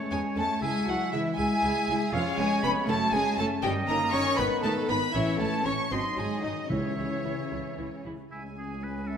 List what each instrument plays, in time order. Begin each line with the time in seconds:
Already playing: french horn section G#3 C#4, cello section A3, violin section A4, oboe C#5
0.11 double bass section E2, viola section G#3 C#4, cello section G#3, violin section G#4 G#5, flute section G#5
0.36 double bass section E2, viola section G#3 C#4, cello section A3, violin section A4 A5, flute section A5
0.61 double bass section C#2, viola section G#3 E4, cello section G#3, french horn section E4, violin section G#4 G#5, oboe E5, flute section G#5
0.87 double bass section C#2, cello section F#3, viola section G#3 E4, violin section F#4 F#5, flute section F#5
1.11 double bass section C#2, cello section E3, viola section G#3 E4, violin section E4 E5, flute section E5
1.37 double bass section C#2, cello section G#3, viola section G#3 E4, violin section G#4 G#5, oboe E5, flute section G#5
1.63 double bass section C#2, viola section G#3 E4
1.88 double bass section C#2, viola section G#3 E4
2.13 double bass section F1, cello section F3, french horn section G#3 C#4, viola section B3 C#4, violin section F4 F5, oboe C#5, flute section F5
2.38 double bass section F1, cello section G#3, viola section B3 C#4, violin section G#4 G#5, flute section G#5
2.63 double bass section F1, cello section B3, viola section B3 C#4, violin section B4 B5, flute section B5
2.87 double bass section F#1, french horn section F#3, cello section A3, viola section A3 C#4, violin section A4 A5, flute section A5
3.11 double bass section F#1, cello section G#3, viola section A3 C#4, violin section G#4 G#5, flute section G#5
3.36 double bass section F#1, cello section A3, viola section A3 C#4, violin section A4 A5, flute section A5
3.62 double bass section G1, french horn section D#3, cello section G3, viola section C#4 D#4, violin section G4 G5, oboe D#5, flute section G5
3.87 double bass section G1, cello section A#3, viola section C#4 D#4, violin section A#4 A#5, flute section A#5
4.12 double bass section G1, viola section C#4 D#4, cello section C#4, violin section C#5 C#6, flute section C#6
4.37 double bass section G#1, french horn section B3, cello section B3, viola section B3 D#4, violin section B4 B5, oboe B4, flute section B5
4.63 double bass section G#1, cello section A3, viola section B3 D#4, violin section A4 A5, flute section A5
4.89 double bass section G#1, cello section B3, viola section B3 D#4, violin section B4 B5, flute section B5
5.13 double bass section A1, cello section E3, french horn section E3 C#4, viola section A3 C#4, violin section E4 E5, oboe C#5, flute section E5
5.39 double bass section A1, viola section A3 C#4, cello section A3, violin section A4 A5, flute section A5
5.65 double bass section A1, viola section A3 C#4, cello section C#4, violin section C#5 C#6, flute section C#6
5.90 double bass section G#1, viola section F#3 D#4, french horn section F#3 D#4, cello section C4, violin section C5 C6, oboe D#5, flute section C6
6.16 double bass section G#1, viola section F#3 D#4, cello section G#3, violin section G#4 G#5, flute section G#5
6.42 double bass section G#1, cello section D#3, viola section F#3 D#4, violin section D#4 D#5, flute section D#5
6.69 double bass section C#2, timpani C#3, cello section C#3, viola section E3 E4, french horn section E3 E4, violin section C#4 C#5, flute section C#5, oboe E5
6.96 double bass section C#2, viola section E3 E4
7.23 double bass section C#2, viola section E3 E4
7.51 double bass section C#2, viola section E3 E4
7.78 double bass section C#2, viola section E3 E4
8.05 double bass section C#2, viola section E3 E4
8.31 cello section C#2, double bass section C#2, viola section G#3, french horn section G#3 C#4, violin section C#4 G#5, oboe E4, flute section G#5
8.57 oboe G#4
8.83 oboe B4
9.07 oboe A4, flute section E5